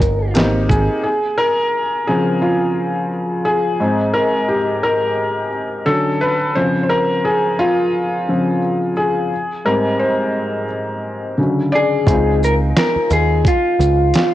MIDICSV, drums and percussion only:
0, 0, Header, 1, 2, 480
1, 0, Start_track
1, 0, Tempo, 689655
1, 720, Time_signature, 4, 2, 24, 8
1, 9981, End_track
2, 0, Start_track
2, 0, Title_t, "Drums"
2, 11, Note_on_c, 9, 42, 41
2, 11, Note_on_c, 9, 82, 44
2, 81, Note_off_c, 9, 42, 0
2, 81, Note_off_c, 9, 82, 0
2, 242, Note_on_c, 9, 42, 62
2, 255, Note_on_c, 9, 38, 109
2, 312, Note_off_c, 9, 42, 0
2, 324, Note_off_c, 9, 38, 0
2, 483, Note_on_c, 9, 36, 77
2, 494, Note_on_c, 9, 82, 43
2, 553, Note_off_c, 9, 36, 0
2, 563, Note_off_c, 9, 82, 0
2, 8399, Note_on_c, 9, 36, 112
2, 8409, Note_on_c, 9, 42, 83
2, 8469, Note_off_c, 9, 36, 0
2, 8478, Note_off_c, 9, 42, 0
2, 8655, Note_on_c, 9, 82, 46
2, 8724, Note_off_c, 9, 82, 0
2, 8885, Note_on_c, 9, 38, 110
2, 8887, Note_on_c, 9, 42, 71
2, 8954, Note_off_c, 9, 38, 0
2, 8956, Note_off_c, 9, 42, 0
2, 9122, Note_on_c, 9, 42, 39
2, 9122, Note_on_c, 9, 82, 39
2, 9192, Note_off_c, 9, 42, 0
2, 9192, Note_off_c, 9, 82, 0
2, 9360, Note_on_c, 9, 36, 91
2, 9373, Note_on_c, 9, 42, 78
2, 9430, Note_off_c, 9, 36, 0
2, 9442, Note_off_c, 9, 42, 0
2, 9610, Note_on_c, 9, 42, 42
2, 9610, Note_on_c, 9, 82, 42
2, 9680, Note_off_c, 9, 42, 0
2, 9680, Note_off_c, 9, 82, 0
2, 9840, Note_on_c, 9, 42, 66
2, 9852, Note_on_c, 9, 38, 113
2, 9909, Note_off_c, 9, 42, 0
2, 9921, Note_off_c, 9, 38, 0
2, 9981, End_track
0, 0, End_of_file